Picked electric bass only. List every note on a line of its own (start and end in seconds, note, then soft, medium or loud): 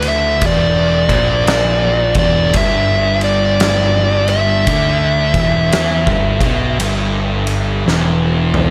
0.00 0.39 D2 medium
0.42 1.06 E1 medium
1.09 2.12 A#1 loud
2.15 2.52 E1 medium
2.54 4.64 G1 loud
4.67 5.31 D2 medium
5.34 5.71 E1 loud
5.75 6.06 E2 medium
6.07 6.39 G1 medium
6.41 6.78 B1 medium
6.80 7.83 G1 loud
7.88 8.70 E1 medium